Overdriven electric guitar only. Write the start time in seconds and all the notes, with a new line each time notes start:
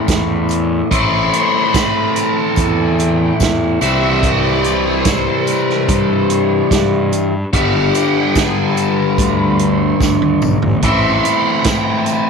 Already playing: A2 E3 A3 C4 E4
0.91 A2 E3 A3 C4 E4
3.81 C3 E3 G3 C4 E4
7.53 G2 D3 G3 B3 D4 G4
10.83 A2 E3 C4 E4 A4